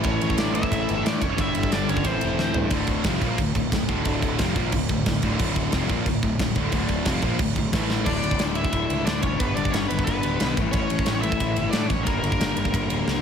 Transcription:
Already playing: A2 E3 A3
0.03 A1 C#4 C#5, kick, ride
0.21 A1, ride
0.30 kick
0.37 A1 D4 D5, snare, ride
0.53 E3 A3 E4 E5, ride
0.57 A2
0.63 kick
0.72 A1, kick, ride
0.89 G1, ride
1.05 A2 D4 D5, snare, ride
1.21 F1 C#4 C#5, kick, ride
1.37 G1 G2 D3 G3 E4 E5, kick, ride
1.55 G1, ride
1.63 kick
1.72 G1 D4 D5, snare, ride
1.89 G1 C#4 C#5, ride
1.97 kick
2.02 A1 A2 E3 A3 C4 C5, kick, ride
2.21 E1, ride
2.39 D2, snare
2.54 G2, floor tom
2.69 D1 D2 A2 D3, kick, crash
2.87 kick, crash
3.04 F1 F2 C3 F3, kick, snare, crash
3.21 A#1 A#2 F3 A#3, kick, crash
3.38 D1 D2 A2, kick, crash
3.55 D1 D2 A2, kick, crash
3.72 D1 D2 A2, kick, snare, crash
3.88 D1 D2 A2 D3, kick, crash
4.05 D1 D2 A2 D3, kick, crash
4.22 kick, crash
4.39 F1 F2 C3 F3, kick, snare, crash
4.55 A#1 A#2 F3 A#3, kick, crash
4.72 D1 D2 A2, kick, crash
4.89 D1 D2 A2, kick, crash
5.06 D1 D2 A2, kick, snare, crash
5.22 D1 D2 A2 D3, kick, crash
5.39 D1 D2 A2 D3, kick, crash
5.55 kick, crash
5.72 F1 F2 C3 F3, kick, snare, crash
5.89 A#1 A#2 F3 A#3, kick, crash
6.06 D1 D2 A2, kick, crash
6.23 D1 D2 A2, kick, crash
6.39 D1 D2 A2, kick, snare, crash
6.55 D1 D2 A2 D3, kick, crash
6.72 D1 D2 A2 D3, kick, crash
6.88 kick, crash
7.05 F1 F2 C3 F3, kick, snare, crash
7.22 A#1 A#2 F3 A#3, kick, crash
7.39 D1 D2 A2, kick, crash
7.56 D1 D2 A2, kick, crash
7.72 A1 A2 E3 A3, kick, snare, crash
7.90 snare
8.05 D1 D2 A2 D3 D4 D5, kick, crash
8.23 D1, ride
8.31 kick
8.39 D1, snare, ride
8.55 E4 E5, ride
8.65 kick
8.71 D1 D2 A2 D3, kick, ride
8.90 C#2, ride
9.04 D2 D4 D5, snare, ride
9.22 F1 C#4 C#5, kick, ride
9.38 G1 G2 D3 B3 B4, kick, ride
9.42 G3
9.55 G1 D4 D5, ride
9.65 kick
9.72 G1 C#4 C#5, snare, ride
9.88 G1 B3 B4, ride
9.99 kick
10.05 G1 G2 D3 G3 B3 B4, kick, ride
10.23 D1, ride
10.40 B1, snare, ride
10.55 A1 A2 E3 A3, kick, ride
10.71 A1 C#4 C#5, kick, ride
10.90 A1, ride
10.99 kick
11.06 A1, snare, ride
11.21 E3 A3 E4 E5, ride
11.25 A2
11.32 kick
11.40 A1, kick, ride
11.56 G1, ride
11.70 A2 D4 D5, snare, ride
11.87 A1 C#4 C#5, kick, ride
12.03 G1 G2 D3 A#3 A#4, kick, ride
12.08 G3
12.19 A#3 A#4
12.23 G1, ride
12.32 kick
12.40 G1, snare, ride
12.57 G1, ride
12.65 kick
12.72 G1 G2 D3 G3, kick, ride
12.90 D1, ride
13.07 C#2, snare

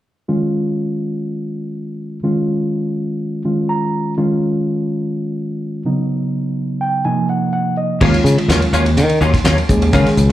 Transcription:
0.28 D#3 G#3 C#4 F4
2.23 D#3 G#3 C#4 F4
3.45 D#3 G#3 C#4 F4
3.69 A#5
4.17 D#3 G#3 C#4 F4
5.85 C#3 F#3 B3 D#4
6.81 G5
7.05 C3 F3 A#3 D#4 G#5
7.29 F#5
7.53 F#5
7.77 D#5
8.01 D#2 D#3 F#3 G#3 A#3 C#4 F4, kick, crash
8.14 ride
8.24 C#3, muted clean electric guitar stroke, hi-hat pedal
8.38 muted clean electric guitar stroke, ride
8.48 D#2 F#3 A#3 C#4 F4, snare, hi-hat pedal, ride
8.62 muted clean electric guitar stroke, ride
8.73 D#2 F#3 A#3 C#4 F4, hi-hat pedal
8.85 muted clean electric guitar stroke, ride
8.97 D#3, muted clean electric guitar stroke, hi-hat pedal, ride
9.09 ride
9.21 D#2 F#3 A#3 C#4 F4, hi-hat pedal
9.33 muted clean electric guitar stroke, kick, snare, ride
9.44 D#2 F#3 A#3 C#4 F4, snare, hi-hat pedal, ride
9.58 muted clean electric guitar stroke, ride
9.69 D#2 D#3 G#3 C#4 G#4, kick, hi-hat pedal
9.82 muted clean electric guitar stroke, ride
9.93 C#3 D#3 F#3 G#3 A#3 C#4 F4 G#4, kick, hi-hat pedal, ride
10.06 muted fingered electric bass stroke, snare, ride
10.17 C#2, muted clean electric guitar stroke, hi-hat pedal

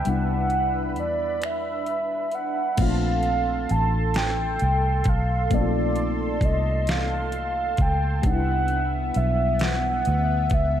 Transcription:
Already playing: D4 B4 E5 G5
0.05 C2 G3 B3 D4 B5, closed hi-hat
0.09 E4 F#5
0.50 closed hi-hat
0.96 E2 D5, closed hi-hat
1.42 E5, finger snap, closed hi-hat
1.86 closed hi-hat
2.32 B1 F#5, closed hi-hat
2.77 A#1 A3 C4 C#4 A4 F5 A5 C6, kick, closed hi-hat, crash
2.82 F4
2.87 D4
3.23 closed hi-hat
3.69 A1 A5, closed hi-hat
4.14 G5, snare, closed hi-hat
4.59 C2, closed hi-hat
5.04 B1, kick, closed hi-hat
5.09 F5
5.50 A#1 A3 A#3 C4, kick, closed hi-hat
5.54 D#4 D5
5.61 F4
5.96 closed hi-hat
6.41 C2, kick, closed hi-hat
6.45 D#5
6.87 F5, snare, closed hi-hat
7.32 closed hi-hat
7.77 C#2, kick, closed hi-hat
7.81 G5
8.22 C2 G3 B3 D4 E5, kick, closed hi-hat
8.26 D#4 F#5
8.34 E4
8.68 closed hi-hat
9.14 B1 E5, closed hi-hat
9.59 F#5, snare, closed hi-hat
10.05 D2, closed hi-hat
10.50 C#2, kick, closed hi-hat
10.54 E5

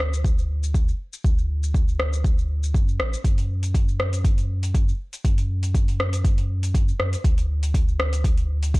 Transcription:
Already playing: D2
0.00 cross-stick
0.13 shaker
0.24 kick, shaker
0.38 shaker
0.63 shaker
0.74 kick, shaker
0.88 shaker
1.13 shaker
1.24 D2, kick, shaker
1.38 shaker
1.63 shaker
1.74 kick, shaker
1.88 shaker
2.00 cross-stick
2.13 shaker
2.24 kick, shaker
2.38 shaker
2.63 shaker
2.74 F#2, kick, shaker
2.88 shaker
2.99 A1, cross-stick
3.13 shaker
3.24 F#2, kick, closed hi-hat, shaker
3.38 closed hi-hat, shaker
3.63 closed hi-hat, shaker
3.74 kick, closed hi-hat, shaker
3.88 shaker
4.00 cross-stick
4.13 closed hi-hat, shaker
4.25 kick, closed hi-hat, shaker
4.38 closed hi-hat, shaker
4.63 closed hi-hat, shaker
4.75 kick, closed hi-hat, shaker
4.89 shaker
5.13 closed hi-hat, shaker
5.25 F#2, kick, closed hi-hat, shaker
5.38 closed hi-hat, shaker
5.63 closed hi-hat, shaker
5.74 kick, closed hi-hat, shaker
5.88 closed hi-hat, shaker
6.00 cross-stick
6.13 closed hi-hat, shaker
6.25 kick, closed hi-hat, shaker
6.38 closed hi-hat, shaker
6.63 closed hi-hat, shaker
6.75 kick, closed hi-hat, shaker
6.88 shaker
7.00 F#2, cross-stick
7.13 closed hi-hat, shaker
7.24 D2, kick, closed hi-hat, shaker
7.38 closed hi-hat, shaker
7.63 closed hi-hat, shaker
7.74 kick, closed hi-hat, shaker
7.88 shaker
8.00 cross-stick
8.13 closed hi-hat, shaker
8.24 kick, closed hi-hat, shaker
8.38 closed hi-hat, shaker
8.63 closed hi-hat, shaker
8.74 kick, closed hi-hat, shaker

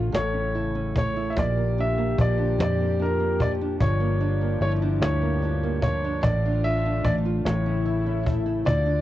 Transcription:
Already playing: A1 A2 D3 A3 D4 F4
0.12 A1 A2 C#3 E4 A4 C#5, cajon slap
0.34 C#4
0.54 E4, cajon slap
0.56 cajon slap
0.75 C#4
0.96 A3 C#5, cajon bass
1.16 E4
1.30 E5
1.36 A#1 A#2 D3 A#3 F4 G4 D5, cajon bass
1.57 A#3
1.78 D4 E5, cajon slap
1.98 A#3
2.18 A#1 F3 D5, cajon bass
2.38 D4
2.58 F2 A#2 D5, cajon slap
2.80 A#3
2.99 D4 A#4, cajon slap
3.20 A#3
3.40 F3 D5, cajon bass
3.62 D4
3.80 G1 G2 F3 F4 G4 C#5, cajon bass
4.00 A#3
4.21 D4, cajon slap
4.42 A#3
4.61 G1 F3 E4 C#5, cajon slap
4.82 D4
5.01 D2 G2 C#5, cajon slap
5.22 A#3
5.42 D4, cajon slap
5.43 cajon slap
5.63 A#3
5.82 F3 C#5, cajon bass
6.04 D4
6.23 A1 A2 D3 A3 D4 F4 D5, cajon bass
6.46 D4
6.64 F4 E5, cajon slap
6.86 D4
7.04 A1 A3 D5, cajon bass
7.25 F4
7.44 A1 A2 C#3 E4 C#5, cajon slap
7.66 C#4
7.85 E4, cajon slap
8.06 C#4
8.26 A3, cajon bass
8.46 E4
8.65 D2 D3 F4 D5, cajon bass
8.86 D4

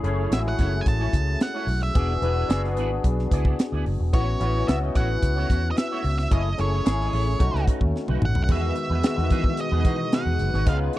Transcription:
Already playing: C#4 E4 G#4
0.03 F#1 A3 C#4 E4 G#4 A4 C#5, closed hi-hat
0.18 C#4 E4 A4 C#5
0.31 A1 G#3 C#4 E4 F#4 E5, muted clean electric guitar stroke, snare, closed hi-hat
0.38 A3
0.46 C#4 E4 A4 D#5 F#5, snare
0.59 F#1 C#4 E4 A4 C#5, kick, snare, closed hi-hat
0.73 muted clean electric guitar stroke
0.81 G#5
0.86 A1 A5, muted clean electric guitar stroke, kick, closed hi-hat
0.99 C#4 E4 A4 C#5
1.13 C#2, muted clean electric guitar stroke, kick, closed hi-hat
1.27 muted clean electric guitar stroke
1.41 F#5, muted clean electric guitar stroke, snare, closed hi-hat
1.54 C#4 E4 A4 C#5
1.67 B1, muted clean electric guitar stroke, open hi-hat
1.81 E5, muted clean electric guitar stroke
1.94 E1 B3 D4 E4 F#4 G#4 D5, kick, closed hi-hat
2.22 E1 B3 D4 E4 F#4 G#4 B4 D5, closed hi-hat
2.36 B3 E4 G#4 D5
2.49 F#1 B3 D4 F#4 G#4, muted clean electric guitar stroke, snare, closed hi-hat
2.63 B3 E4 G#4 E5, snare
2.76 G#1 B3 E4 G#4 D5, closed hi-hat
2.91 muted clean electric guitar stroke
3.04 B1, muted clean electric guitar stroke, kick, closed hi-hat
3.18 muted clean electric guitar stroke, snare
3.31 C#2 B3 E4 G#4 D5, kick, closed hi-hat
3.45 B3 E4 G#4 D5, kick
3.59 muted clean electric guitar stroke, snare, closed hi-hat
3.72 D2 B3 E4 G#4 D5
3.85 F#1, muted clean electric guitar stroke, open hi-hat
4.00 E1, muted clean electric guitar stroke
4.13 A1 A3 B3 C#4 E4 F#4 C#5, kick, closed hi-hat
4.40 A1 A3 B3 C#4 E4 F#4 C#5, closed hi-hat
4.54 A3 E4 F#4 C#5
4.67 C#2 B3 C#4 E4 F#4 E5, muted clean electric guitar stroke, snare, closed hi-hat
4.81 A3 E4 F#4 D#5
4.95 A1 A3 E4 F#4 C#5 F#5, kick, closed hi-hat
5.09 muted clean electric guitar stroke
5.22 C#2, muted clean electric guitar stroke, kick, closed hi-hat
5.36 A3 E4 F#4 C#5
5.50 E2 A3 E4 F#4 C#5, kick, closed hi-hat
5.63 muted clean electric guitar stroke
5.71 D#5
5.77 E5, muted clean electric guitar stroke, snare, closed hi-hat
5.91 A3 E4 F#4 C#5
6.04 C#2, muted clean electric guitar stroke, open hi-hat
6.18 E5, muted clean electric guitar stroke, snare
6.31 F#1 A3 C#4 E4 G#4 A4 C#5 D#5, kick, closed hi-hat
6.58 F#1 A3 C#4 E4 G#4 A4 C#5, closed hi-hat
6.72 C#4 E4 A4 C#5
6.85 G#1 A3 C#4 E4 G#4, muted clean electric guitar stroke, snare, closed hi-hat
7.00 C#4 E4 A4 D#5, snare
7.13 A1 C#4 E4 A4 C#5, open hi-hat
7.26 muted clean electric guitar stroke
7.39 B1 A3 C#4 D#4 F#4, muted clean electric guitar stroke, kick, closed hi-hat
7.54 C#2 A3 D#4 F#4 B4, snare
7.67 A3 D#4 F#4 B4, kick, closed hi-hat
7.81 D#2, muted clean electric guitar stroke, kick
7.95 muted clean electric guitar stroke, snare
8.08 B1 A3 D#4 F#4 B4, high tom
8.22 A1 F#5, muted clean electric guitar stroke, mid tom
8.35 B1, muted clean electric guitar stroke, floor tom
8.44 F#5
8.48 E2 B2 D#3 G#3 B3 D#4 F#4 G#4 B4 E5, kick, crash
8.76 muted clean electric guitar stroke, closed hi-hat
8.90 E2 B3 D#4 G#4 B4
9.03 D#3 G#3 B3 F#4 E5, muted clean electric guitar stroke, snare, closed hi-hat
9.16 E2 B3 D#4 G#4 B4, snare
9.30 E3 B3 D#4 G#4 B4, kick, snare, closed hi-hat
9.44 muted clean electric guitar stroke, kick
9.57 D#5, muted clean electric guitar stroke, closed hi-hat
9.71 E2 B3 D#4 G#4 B4
9.84 E3 G#3 B3 D#4 F#4 G#4 B4, kick, closed hi-hat
9.99 muted clean electric guitar stroke
10.12 B3 D#4 G#4 B4 F#5, snare, closed hi-hat
10.26 E2, muted clean electric guitar stroke
10.39 F#1, muted clean electric guitar stroke, closed hi-hat
10.53 G#1 B3 D#4 G#4 C#5, snare
10.66 C#2 C#3 G#3 B3 C#4 D#4 F4 B4 F5, kick, closed hi-hat
10.93 muted clean electric guitar stroke, closed hi-hat

